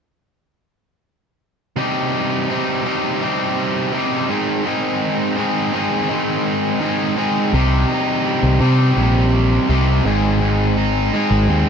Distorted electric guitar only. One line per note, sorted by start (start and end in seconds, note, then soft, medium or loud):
1.77 2.47 C3 medium
1.77 2.48 G3 medium
1.77 2.49 C4 medium
1.77 2.50 D#4 loud
1.77 2.49 G4 medium
2.49 2.83 C3 medium
2.49 2.84 G3 medium
2.49 2.85 C4 medium
2.49 2.86 D#4 medium
2.49 2.86 G4 medium
2.84 3.19 C3 medium
2.84 3.20 G3 medium
2.84 3.21 C4 medium
2.84 3.22 D#4 medium
2.84 3.21 G4 medium
3.20 3.91 C3 medium
3.20 3.92 G3 medium
3.20 3.93 C4 medium
3.20 3.94 D#4 medium
3.20 3.93 G4 medium
3.93 4.27 C3 medium
3.93 4.27 G3 medium
3.93 4.30 C4 medium
3.93 4.30 D#4 medium
3.93 4.28 G4 medium
4.28 4.64 G#2 medium
4.28 4.64 D#3 medium
4.28 4.65 G#3 medium
4.28 4.65 C4 medium
4.28 4.66 D#4 medium
4.28 4.66 G#4 medium
4.65 5.35 G#2 medium
4.65 5.36 D#3 medium
4.65 5.36 G#3 loud
4.65 5.37 C4 loud
4.65 5.37 D#4 loud
4.65 5.37 G#4 medium
5.36 5.72 G#2 medium
5.36 5.72 D#3 medium
5.36 5.73 G#3 medium
5.36 5.73 C4 medium
5.36 5.74 D#4 medium
5.36 5.74 G#4 medium
5.73 6.08 G#2 medium
5.73 6.08 D#3 medium
5.73 6.09 G#3 medium
5.73 6.09 C4 medium
5.73 6.10 D#4 loud
5.73 6.10 G#4 loud
6.09 6.79 G#2 medium
6.09 6.80 D#3 medium
6.09 6.80 G#3 medium
6.09 6.80 C4 medium
6.09 6.81 D#4 medium
6.09 6.81 G#4 medium
6.80 7.15 G#2 medium
6.80 7.16 D#3 medium
6.80 7.16 G#3 medium
6.80 7.17 C4 medium
6.80 7.17 D#4 medium
6.80 7.17 G#4 medium
7.16 7.51 G#2 medium
7.16 7.51 D#3 medium
7.16 7.51 G#3 medium
7.16 7.51 C4 medium
7.16 7.52 D#4 medium
7.16 7.52 G#4 medium
7.52 8.59 C3 medium
7.52 8.59 G3 medium
7.52 8.62 C4 loud
7.52 8.61 D#4 loud
7.52 8.59 G4 medium
8.60 9.67 C3 medium
8.60 9.68 G3 medium
8.60 9.68 C4 medium
8.60 9.70 D#4 medium
8.60 9.67 G4 medium
9.68 10.02 C3 medium
9.68 10.03 G3 medium
9.68 10.03 C4 medium
9.68 10.06 D#4 medium
9.68 10.04 G4 medium
10.04 11.10 G#2 medium
10.04 11.11 D#3 medium
10.04 11.11 G#3 medium
10.04 11.11 C4 medium
10.04 11.15 D#4 medium
10.04 11.12 G#4 medium
11.13 11.69 G#2 medium
11.13 11.69 D#3 medium
11.13 11.69 G#3 medium
11.13 11.69 C4 medium
11.13 11.69 D#4 medium
11.13 11.69 G#4 medium